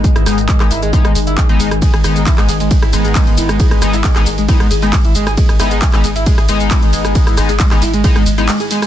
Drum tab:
RD |----------------|x---x---x---x---|x---x---x---x---|x---x---x---x---|
HH |xxoxxxoxxxoxoxox|xxoxxxooxxoxxxox|xxoxxxoxxxoxoxox|xxoxxxooxxoxxxox|
SH |xxxxxxxxxxxxxxxx|xxxxxxxxxxxxxxxx|xxxxxxxxxxxxxxxx|xxxxxxxxxxxxxxxx|
CP |----xx------x---|----xx------x---|----xx------x---|----xx------x---|
SD |-rr--r---r-----r|-rr--r---r-----r|-rr--r---r-----r|-rr--r---r-----r|
BD |o---o---o---o---|o---o---o---o---|o---o---o---o---|o---o---o---o---|

RD |x---x---x---x---|
HH |xxoxxxoxxxoxoxox|
SH |xxxxxxxxxxxxxxxx|
CP |----xx------x---|
SD |-rr--r---r-----r|
BD |o---o---o-------|